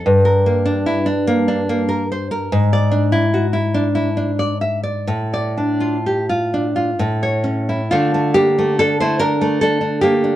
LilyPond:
\new Staff \with { instrumentName = "Nylon-string guitar" } { \time 3/4 \key d \minor \tempo 4 = 71 << { r2. | r2. | r2. | <a f'>8 <bes g'>8 <d' a'>16 <e' c''>16 <d' bes'>8 <d' a'>8 <bes g'>8 | } \\ { g,16 bes'16 bes16 d'16 e'16 d'16 bes16 d'16 bes16 bes'16 c''16 bes'16 | gis,16 d''16 d'16 e'16 fis'16 e'16 d'16 e'16 d'16 d''16 e''16 d''16 | a,16 d''16 d'16 f'16 g'16 f'16 d'16 f'16 a,16 cis''16 cis'16 e'16 | d16 a16 d'16 a8 a8 a8 d'16 a16 d'16 | } >> }